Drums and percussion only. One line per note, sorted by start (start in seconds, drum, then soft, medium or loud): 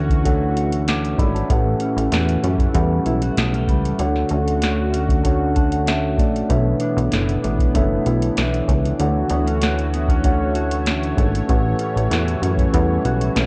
0.09 kick loud
0.09 closed hi-hat medium
0.25 kick medium
0.25 closed hi-hat loud
0.57 closed hi-hat medium
0.72 closed hi-hat medium
0.88 snare loud
0.88 closed hi-hat medium
1.05 closed hi-hat soft
1.18 kick medium
1.18 closed hi-hat medium
1.36 closed hi-hat soft
1.50 kick loud
1.50 closed hi-hat medium
1.80 closed hi-hat medium
1.98 closed hi-hat medium
2.12 snare loud
2.12 closed hi-hat medium
2.29 closed hi-hat soft
2.44 closed hi-hat medium
2.59 kick loud
2.59 closed hi-hat medium
2.75 kick medium
2.75 closed hi-hat medium
3.06 closed hi-hat medium
3.22 closed hi-hat medium
3.37 snare loud
3.37 closed hi-hat medium
3.54 closed hi-hat soft
3.68 kick medium
3.68 closed hi-hat medium
3.85 closed hi-hat medium
3.99 closed hi-hat medium
4.16 snare soft
4.29 closed hi-hat medium
4.48 closed hi-hat medium
4.62 snare loud
4.62 closed hi-hat loud
4.94 closed hi-hat medium
5.08 kick medium
5.08 closed hi-hat medium
5.25 kick medium
5.25 closed hi-hat medium
5.56 kick medium
5.56 closed hi-hat medium
5.72 closed hi-hat medium
5.87 snare loud
5.87 closed hi-hat medium
6.18 kick medium
6.18 closed hi-hat medium
6.36 closed hi-hat soft
6.50 kick loud
6.50 closed hi-hat medium
6.80 closed hi-hat medium
6.98 closed hi-hat medium
7.12 snare loud
7.12 closed hi-hat medium
7.29 closed hi-hat soft
7.44 closed hi-hat medium
7.59 kick loud
7.59 closed hi-hat soft
7.75 kick medium
7.75 closed hi-hat medium
8.06 closed hi-hat medium
8.22 closed hi-hat medium
8.37 snare loud
8.37 closed hi-hat medium
8.54 closed hi-hat soft
8.68 kick medium
8.68 closed hi-hat medium
8.85 closed hi-hat soft
8.99 closed hi-hat medium
9.30 closed hi-hat medium
9.47 closed hi-hat soft
9.62 snare loud
9.62 closed hi-hat loud
9.79 closed hi-hat soft
9.94 closed hi-hat medium
10.08 kick loud
10.08 closed hi-hat medium
10.24 kick medium
10.24 closed hi-hat medium
10.55 closed hi-hat medium
10.71 closed hi-hat medium
10.86 snare loud
10.86 closed hi-hat medium
11.03 closed hi-hat soft
11.18 kick medium
11.18 closed hi-hat medium
11.35 closed hi-hat medium
11.49 kick loud
11.49 closed hi-hat medium
11.79 closed hi-hat medium
11.97 closed hi-hat soft
12.11 snare loud
12.11 closed hi-hat loud
12.28 closed hi-hat soft
12.43 closed hi-hat medium
12.58 kick medium
12.58 closed hi-hat medium
12.74 kick medium
12.74 closed hi-hat medium
13.05 closed hi-hat medium
13.21 closed hi-hat medium
13.36 snare loud
13.36 closed hi-hat medium